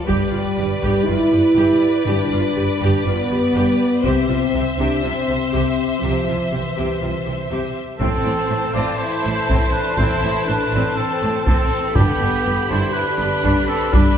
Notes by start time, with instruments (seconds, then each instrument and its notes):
0.05 double bass section G1, cello section G2, french horn section G3, viola section G4, violin section B4 D5, taiko
0.31 double bass section G1, cello section G2, viola section F4
0.57 double bass section G1, cello section G2, viola section G4
0.81 double bass section G1, cello section G2, viola section G4, taiko
1.05 double bass section G1, cello section G2, french horn section E4, viola section F4
1.31 double bass section G1, cello section G2, viola section G4
1.56 double bass section G1, cello section G2, viola section G4
2.06 double bass section G1, cello section G2, french horn section D4, viola section G4
2.31 double bass section G1, cello section G2, viola section F4
2.55 double bass section G1, cello section G2, viola section G4
2.80 double bass section G1, cello section G2, viola section G4
3.06 double bass section G1, cello section G2, french horn section B3, viola section F4
3.30 double bass section G1, cello section G2, viola section G4
3.55 double bass section G1, cello section G2, viola section G4
4.03 double bass section C2, cello section C3, french horn section C4, viola section G4, violin section C5 E5, taiko
4.28 double bass section C2, cello section C3, viola section F4
4.53 double bass section C2, cello section C3, viola section G4
4.78 double bass section C2, cello section C3, french horn section D4, viola section G4
5.02 double bass section C2, cello section C3, french horn section C4, viola section F4
5.28 double bass section C2, cello section C3, viola section G4
5.52 double bass section C2, cello section C3, viola section G4
6.00 double bass section C2, cello section C3, french horn section F3, viola section G4
6.25 cello section C3, viola section F4
6.30 double bass section C2
6.52 double bass section C2, cello section C3, french horn section E3, viola section G4
6.76 double bass section C2, cello section C3, viola section G4
7.01 double bass section C2, cello section C3, viola section F4
7.25 double bass section C2, cello section C3, viola section G4
7.50 double bass section C2, cello section C3, viola section G4
7.99 double bass section A1, cello section A2, french horn section E3 A4, viola section C4 C5, violin section C4 A5, trumpet A4, taiko
8.24 double bass section A1, cello section A2, viola section E3
8.50 double bass section A1, cello section A2, viola section A3
8.74 double bass section A1, cello section A2, viola section C4, violin section F4, trumpet D5
8.99 violin section E4, trumpet C5
9.24 double bass section A1, cello section A2, viola section A3
9.48 double bass section A1, cello section A2, viola section C4, taiko
9.72 violin section D4, trumpet B4
9.97 double bass section A1, cello section A2, viola section C4, violin section E4, trumpet C5, taiko
10.23 double bass section A1, cello section A2, viola section E3
10.45 double bass section A1, cello section A2, viola section A3, violin section D4, trumpet B4
10.73 double bass section A1, cello section A2, viola section C4
10.96 violin section C4, trumpet A4
11.22 double bass section A1, cello section A2, viola section A3
11.45 double bass section A1, cello section A2, violin section C4, viola section C4, trumpet A4, taiko
11.94 double bass section G1, cello section G2, french horn section D3, violin section B3 B5, viola section D4 G4, trumpet G4, taiko
12.21 double bass section G1, cello section G2, viola section G3
12.45 double bass section G1, cello section G2, viola section B3
12.68 double bass section G1, cello section G2, viola section D4, violin section E4, trumpet C5
12.93 violin section D4, french horn section B4, trumpet B4
13.18 double bass section G1, cello section G2, viola section B3
13.43 double bass section G1, cello section G2, viola section D4, taiko
13.68 violin section C4, trumpet A4
13.92 double bass section G1, cello section G2, viola section D4, violin section D4, trumpet B4, taiko